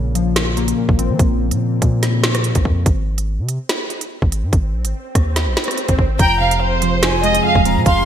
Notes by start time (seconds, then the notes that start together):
Already playing: A#1 A#2 C#3
0.15 F3, closed hi-hat
0.36 A#2, snare, closed hi-hat
0.57 A#3, closed hi-hat
0.68 closed hi-hat
0.78 A#2
0.89 G#1, kick
0.98 C4, closed hi-hat
1.10 F3
1.19 A#1, kick, closed hi-hat
1.51 A#2, closed hi-hat
1.82 A#2, kick, closed hi-hat
2.03 snare, closed hi-hat
2.24 snare, closed hi-hat
2.35 cross-stick, closed hi-hat
2.44 closed hi-hat
2.55 A#1, kick, closed hi-hat
2.65 F2, kick
2.86 G#1, kick, closed hi-hat, swell
3.18 closed hi-hat
3.39 C3
3.49 closed hi-hat
3.69 snare, closed hi-hat
3.90 closed hi-hat
4.01 closed hi-hat
4.22 G#1, kick
4.32 closed hi-hat
4.43 G#2
4.53 G#1, kick, closed hi-hat
4.74 A#1
4.85 G#1, closed hi-hat
5.15 D#2, kick, cross-stick, closed hi-hat
5.36 snare, closed hi-hat
5.47 A#1
5.57 snare, closed hi-hat
5.64 closed hi-hat
5.68 cross-stick, closed hi-hat
5.78 closed hi-hat
5.88 G#1, kick, closed hi-hat
5.99 G#1, kick
6.19 F1 F2 F3 F4 G#4 G5 A#5, kick, closed hi-hat
6.40 C3 F5
6.51 closed hi-hat
6.61 C5
6.82 F3, closed hi-hat
7.03 F2 G#5, snare, closed hi-hat
7.23 G#3 D#5, closed hi-hat
7.35 closed hi-hat
7.44 F2 F5
7.55 D#1, kick
7.65 C4 A#5, closed hi-hat
7.76 C3
7.86 F1 F2 F5 C6, kick, closed hi-hat